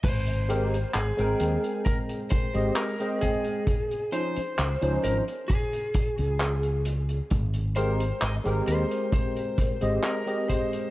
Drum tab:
CC |x---------------|----------------|----------------|
HH |xxxxxxxxxxxxxxxx|xxxxxxxxxxxxxxxx|xxxxxxxxxxxxxxxx|
CP |----x-------x---|----x-------x---|----x-------x---|
BD |o-------o-o---o-|o-------o-o-----|o-------o-o---o-|